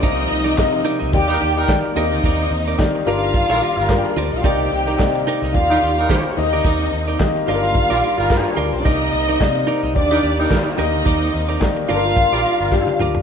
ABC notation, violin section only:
X:1
M:4/4
L:1/16
Q:"Swing 16ths" 1/4=109
K:Cm
V:1 name="Violin section"
[Ee]6 z2 [Gg]4 z2 [Ee]2- | [Ee]4 z2 [Ff]6 z/2 [G,G]/2 [A,A]/2 [B,B]/2 [Cc]/2 [Dd]/2 [Ee]/2 [Ff]/2 | [Gg]6 z2 [Ff]4 z2 [Ee]2- | [Ee]4 z2 [Ff]6 z/2 E/2 F/2 [G,G]/2 [A,A]/2 [B,B]/2 [Cc]/2 [Dd]/2 |
[Ee]6 z2 [Dd]4 z2 [Ee]2- | [Ee]4 z2 [Ff]8 z2 |]